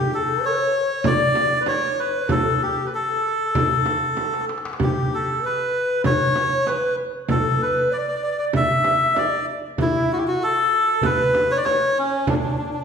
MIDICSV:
0, 0, Header, 1, 5, 480
1, 0, Start_track
1, 0, Tempo, 623701
1, 1770, Time_signature, 4, 2, 24, 8
1, 9883, End_track
2, 0, Start_track
2, 0, Title_t, "Melodica"
2, 0, Program_c, 0, 22
2, 0, Note_on_c, 0, 67, 92
2, 109, Note_off_c, 0, 67, 0
2, 110, Note_on_c, 0, 69, 85
2, 346, Note_off_c, 0, 69, 0
2, 348, Note_on_c, 0, 73, 99
2, 820, Note_on_c, 0, 74, 109
2, 833, Note_off_c, 0, 73, 0
2, 1237, Note_on_c, 0, 71, 77
2, 1254, Note_off_c, 0, 74, 0
2, 1290, Note_off_c, 0, 71, 0
2, 1291, Note_on_c, 0, 73, 101
2, 1535, Note_on_c, 0, 71, 91
2, 1538, Note_off_c, 0, 73, 0
2, 1777, Note_on_c, 0, 69, 90
2, 1780, Note_off_c, 0, 71, 0
2, 2021, Note_off_c, 0, 69, 0
2, 2021, Note_on_c, 0, 67, 77
2, 2203, Note_on_c, 0, 71, 58
2, 2207, Note_off_c, 0, 67, 0
2, 2253, Note_off_c, 0, 71, 0
2, 2268, Note_on_c, 0, 69, 87
2, 3429, Note_off_c, 0, 69, 0
2, 3720, Note_on_c, 0, 67, 76
2, 3952, Note_off_c, 0, 67, 0
2, 3959, Note_on_c, 0, 69, 76
2, 4192, Note_off_c, 0, 69, 0
2, 4196, Note_on_c, 0, 71, 96
2, 4633, Note_off_c, 0, 71, 0
2, 4663, Note_on_c, 0, 73, 105
2, 5135, Note_on_c, 0, 71, 85
2, 5151, Note_off_c, 0, 73, 0
2, 5356, Note_off_c, 0, 71, 0
2, 5622, Note_on_c, 0, 69, 85
2, 5863, Note_off_c, 0, 69, 0
2, 5867, Note_on_c, 0, 71, 79
2, 6101, Note_on_c, 0, 74, 87
2, 6106, Note_off_c, 0, 71, 0
2, 6137, Note_off_c, 0, 74, 0
2, 6149, Note_on_c, 0, 74, 60
2, 6208, Note_off_c, 0, 74, 0
2, 6219, Note_on_c, 0, 74, 72
2, 6269, Note_off_c, 0, 74, 0
2, 6281, Note_on_c, 0, 74, 66
2, 6325, Note_off_c, 0, 74, 0
2, 6336, Note_on_c, 0, 74, 75
2, 6388, Note_off_c, 0, 74, 0
2, 6400, Note_on_c, 0, 74, 66
2, 6444, Note_off_c, 0, 74, 0
2, 6455, Note_on_c, 0, 74, 74
2, 6505, Note_off_c, 0, 74, 0
2, 6591, Note_on_c, 0, 76, 111
2, 7064, Note_on_c, 0, 74, 86
2, 7075, Note_off_c, 0, 76, 0
2, 7281, Note_off_c, 0, 74, 0
2, 7552, Note_on_c, 0, 64, 91
2, 7788, Note_off_c, 0, 64, 0
2, 7794, Note_on_c, 0, 66, 77
2, 7834, Note_on_c, 0, 67, 68
2, 7837, Note_off_c, 0, 66, 0
2, 7883, Note_off_c, 0, 67, 0
2, 7907, Note_on_c, 0, 66, 78
2, 8026, Note_on_c, 0, 69, 99
2, 8029, Note_off_c, 0, 66, 0
2, 8505, Note_on_c, 0, 71, 102
2, 8513, Note_off_c, 0, 69, 0
2, 8861, Note_on_c, 0, 73, 100
2, 8869, Note_off_c, 0, 71, 0
2, 8905, Note_on_c, 0, 74, 82
2, 8911, Note_off_c, 0, 73, 0
2, 8959, Note_off_c, 0, 74, 0
2, 8963, Note_on_c, 0, 73, 103
2, 9221, Note_off_c, 0, 73, 0
2, 9227, Note_on_c, 0, 61, 87
2, 9456, Note_on_c, 0, 62, 76
2, 9467, Note_off_c, 0, 61, 0
2, 9503, Note_off_c, 0, 62, 0
2, 9515, Note_on_c, 0, 62, 54
2, 9555, Note_off_c, 0, 62, 0
2, 9566, Note_on_c, 0, 62, 62
2, 9616, Note_off_c, 0, 62, 0
2, 9628, Note_on_c, 0, 62, 54
2, 9666, Note_off_c, 0, 62, 0
2, 9678, Note_on_c, 0, 62, 59
2, 9729, Note_off_c, 0, 62, 0
2, 9741, Note_on_c, 0, 62, 49
2, 9785, Note_off_c, 0, 62, 0
2, 9797, Note_on_c, 0, 62, 54
2, 9846, Note_off_c, 0, 62, 0
2, 9858, Note_on_c, 0, 62, 52
2, 9883, Note_off_c, 0, 62, 0
2, 9883, End_track
3, 0, Start_track
3, 0, Title_t, "Ney"
3, 0, Program_c, 1, 77
3, 0, Note_on_c, 1, 67, 76
3, 93, Note_on_c, 1, 69, 82
3, 105, Note_off_c, 1, 67, 0
3, 329, Note_on_c, 1, 73, 87
3, 341, Note_off_c, 1, 69, 0
3, 805, Note_on_c, 1, 74, 92
3, 817, Note_off_c, 1, 73, 0
3, 1159, Note_off_c, 1, 74, 0
3, 1164, Note_on_c, 1, 74, 88
3, 1289, Note_on_c, 1, 73, 86
3, 1300, Note_off_c, 1, 74, 0
3, 1771, Note_on_c, 1, 69, 76
3, 1782, Note_off_c, 1, 73, 0
3, 2014, Note_on_c, 1, 67, 72
3, 2026, Note_off_c, 1, 69, 0
3, 2244, Note_off_c, 1, 67, 0
3, 2249, Note_on_c, 1, 69, 79
3, 2972, Note_off_c, 1, 69, 0
3, 3203, Note_on_c, 1, 69, 61
3, 3430, Note_off_c, 1, 69, 0
3, 3693, Note_on_c, 1, 67, 70
3, 4169, Note_on_c, 1, 71, 82
3, 4180, Note_off_c, 1, 67, 0
3, 4648, Note_on_c, 1, 73, 89
3, 4660, Note_off_c, 1, 71, 0
3, 5127, Note_on_c, 1, 71, 75
3, 5138, Note_off_c, 1, 73, 0
3, 5369, Note_off_c, 1, 71, 0
3, 5614, Note_on_c, 1, 69, 73
3, 5836, Note_off_c, 1, 69, 0
3, 5844, Note_on_c, 1, 71, 72
3, 6088, Note_on_c, 1, 74, 82
3, 6100, Note_off_c, 1, 71, 0
3, 6566, Note_on_c, 1, 76, 94
3, 6577, Note_off_c, 1, 74, 0
3, 7039, Note_on_c, 1, 74, 71
3, 7051, Note_off_c, 1, 76, 0
3, 7115, Note_on_c, 1, 76, 60
3, 7126, Note_off_c, 1, 74, 0
3, 7155, Note_on_c, 1, 74, 73
3, 7167, Note_off_c, 1, 76, 0
3, 7289, Note_off_c, 1, 74, 0
3, 7523, Note_on_c, 1, 64, 77
3, 7883, Note_on_c, 1, 66, 74
3, 7895, Note_off_c, 1, 64, 0
3, 8003, Note_on_c, 1, 69, 85
3, 8015, Note_off_c, 1, 66, 0
3, 8478, Note_on_c, 1, 71, 87
3, 8490, Note_off_c, 1, 69, 0
3, 8860, Note_on_c, 1, 73, 81
3, 8872, Note_off_c, 1, 71, 0
3, 8963, Note_off_c, 1, 73, 0
3, 8968, Note_on_c, 1, 73, 92
3, 9453, Note_on_c, 1, 62, 75
3, 9465, Note_off_c, 1, 73, 0
3, 9883, Note_off_c, 1, 62, 0
3, 9883, End_track
4, 0, Start_track
4, 0, Title_t, "Darbuka"
4, 446, Note_on_c, 9, 62, 26
4, 523, Note_off_c, 9, 62, 0
4, 690, Note_on_c, 9, 62, 25
4, 767, Note_off_c, 9, 62, 0
4, 804, Note_on_c, 9, 64, 84
4, 881, Note_off_c, 9, 64, 0
4, 1050, Note_on_c, 9, 63, 66
4, 1126, Note_off_c, 9, 63, 0
4, 1167, Note_on_c, 9, 62, 25
4, 1244, Note_off_c, 9, 62, 0
4, 1288, Note_on_c, 9, 63, 67
4, 1365, Note_off_c, 9, 63, 0
4, 1409, Note_on_c, 9, 62, 24
4, 1486, Note_off_c, 9, 62, 0
4, 1763, Note_on_c, 9, 64, 86
4, 1840, Note_off_c, 9, 64, 0
4, 1892, Note_on_c, 9, 62, 25
4, 1969, Note_off_c, 9, 62, 0
4, 2366, Note_on_c, 9, 62, 24
4, 2443, Note_off_c, 9, 62, 0
4, 2491, Note_on_c, 9, 62, 24
4, 2568, Note_off_c, 9, 62, 0
4, 2613, Note_on_c, 9, 62, 24
4, 2690, Note_off_c, 9, 62, 0
4, 2732, Note_on_c, 9, 64, 88
4, 2809, Note_off_c, 9, 64, 0
4, 2970, Note_on_c, 9, 63, 63
4, 3047, Note_off_c, 9, 63, 0
4, 3093, Note_on_c, 9, 62, 24
4, 3170, Note_off_c, 9, 62, 0
4, 3208, Note_on_c, 9, 63, 55
4, 3267, Note_on_c, 9, 62, 58
4, 3285, Note_off_c, 9, 63, 0
4, 3336, Note_on_c, 9, 63, 63
4, 3344, Note_off_c, 9, 62, 0
4, 3394, Note_on_c, 9, 62, 68
4, 3413, Note_off_c, 9, 63, 0
4, 3458, Note_on_c, 9, 63, 73
4, 3471, Note_off_c, 9, 62, 0
4, 3523, Note_on_c, 9, 62, 75
4, 3535, Note_off_c, 9, 63, 0
4, 3582, Note_on_c, 9, 63, 88
4, 3600, Note_off_c, 9, 62, 0
4, 3641, Note_on_c, 9, 62, 93
4, 3659, Note_off_c, 9, 63, 0
4, 3699, Note_on_c, 9, 64, 94
4, 3718, Note_off_c, 9, 62, 0
4, 3776, Note_off_c, 9, 64, 0
4, 3821, Note_on_c, 9, 62, 26
4, 3898, Note_off_c, 9, 62, 0
4, 4297, Note_on_c, 9, 62, 24
4, 4374, Note_off_c, 9, 62, 0
4, 4533, Note_on_c, 9, 62, 24
4, 4610, Note_off_c, 9, 62, 0
4, 4653, Note_on_c, 9, 64, 97
4, 4730, Note_off_c, 9, 64, 0
4, 4893, Note_on_c, 9, 63, 68
4, 4970, Note_off_c, 9, 63, 0
4, 5019, Note_on_c, 9, 62, 23
4, 5096, Note_off_c, 9, 62, 0
4, 5134, Note_on_c, 9, 63, 70
4, 5211, Note_off_c, 9, 63, 0
4, 5259, Note_on_c, 9, 62, 24
4, 5336, Note_off_c, 9, 62, 0
4, 5612, Note_on_c, 9, 64, 96
4, 5689, Note_off_c, 9, 64, 0
4, 5725, Note_on_c, 9, 62, 27
4, 5802, Note_off_c, 9, 62, 0
4, 6208, Note_on_c, 9, 62, 27
4, 6285, Note_off_c, 9, 62, 0
4, 6457, Note_on_c, 9, 62, 26
4, 6534, Note_off_c, 9, 62, 0
4, 6570, Note_on_c, 9, 64, 86
4, 6647, Note_off_c, 9, 64, 0
4, 6806, Note_on_c, 9, 63, 72
4, 6883, Note_off_c, 9, 63, 0
4, 6928, Note_on_c, 9, 62, 26
4, 7005, Note_off_c, 9, 62, 0
4, 7051, Note_on_c, 9, 63, 71
4, 7128, Note_off_c, 9, 63, 0
4, 7172, Note_on_c, 9, 62, 26
4, 7249, Note_off_c, 9, 62, 0
4, 7528, Note_on_c, 9, 64, 74
4, 7605, Note_off_c, 9, 64, 0
4, 7648, Note_on_c, 9, 62, 30
4, 7725, Note_off_c, 9, 62, 0
4, 8126, Note_on_c, 9, 62, 29
4, 8203, Note_off_c, 9, 62, 0
4, 8369, Note_on_c, 9, 62, 27
4, 8446, Note_off_c, 9, 62, 0
4, 8478, Note_on_c, 9, 64, 76
4, 8554, Note_off_c, 9, 64, 0
4, 8728, Note_on_c, 9, 63, 69
4, 8805, Note_off_c, 9, 63, 0
4, 8847, Note_on_c, 9, 62, 25
4, 8924, Note_off_c, 9, 62, 0
4, 8966, Note_on_c, 9, 63, 66
4, 9043, Note_off_c, 9, 63, 0
4, 9087, Note_on_c, 9, 62, 26
4, 9164, Note_off_c, 9, 62, 0
4, 9444, Note_on_c, 9, 64, 87
4, 9521, Note_off_c, 9, 64, 0
4, 9567, Note_on_c, 9, 62, 28
4, 9644, Note_off_c, 9, 62, 0
4, 9690, Note_on_c, 9, 62, 27
4, 9767, Note_off_c, 9, 62, 0
4, 9883, End_track
5, 0, Start_track
5, 0, Title_t, "Frame drum"
5, 802, Note_on_c, 9, 64, 99
5, 879, Note_off_c, 9, 64, 0
5, 1041, Note_on_c, 9, 64, 68
5, 1118, Note_off_c, 9, 64, 0
5, 1280, Note_on_c, 9, 64, 68
5, 1357, Note_off_c, 9, 64, 0
5, 1763, Note_on_c, 9, 64, 91
5, 1840, Note_off_c, 9, 64, 0
5, 2733, Note_on_c, 9, 64, 94
5, 2810, Note_off_c, 9, 64, 0
5, 2968, Note_on_c, 9, 64, 62
5, 3045, Note_off_c, 9, 64, 0
5, 3209, Note_on_c, 9, 64, 61
5, 3286, Note_off_c, 9, 64, 0
5, 3691, Note_on_c, 9, 64, 83
5, 3768, Note_off_c, 9, 64, 0
5, 4650, Note_on_c, 9, 64, 90
5, 4727, Note_off_c, 9, 64, 0
5, 4891, Note_on_c, 9, 64, 57
5, 4968, Note_off_c, 9, 64, 0
5, 5131, Note_on_c, 9, 64, 58
5, 5208, Note_off_c, 9, 64, 0
5, 5607, Note_on_c, 9, 64, 89
5, 5684, Note_off_c, 9, 64, 0
5, 6567, Note_on_c, 9, 64, 92
5, 6644, Note_off_c, 9, 64, 0
5, 6808, Note_on_c, 9, 64, 62
5, 6885, Note_off_c, 9, 64, 0
5, 7054, Note_on_c, 9, 64, 64
5, 7131, Note_off_c, 9, 64, 0
5, 7529, Note_on_c, 9, 64, 85
5, 7606, Note_off_c, 9, 64, 0
5, 8489, Note_on_c, 9, 64, 91
5, 8566, Note_off_c, 9, 64, 0
5, 8733, Note_on_c, 9, 64, 64
5, 8810, Note_off_c, 9, 64, 0
5, 8975, Note_on_c, 9, 64, 64
5, 9052, Note_off_c, 9, 64, 0
5, 9446, Note_on_c, 9, 64, 91
5, 9522, Note_off_c, 9, 64, 0
5, 9883, End_track
0, 0, End_of_file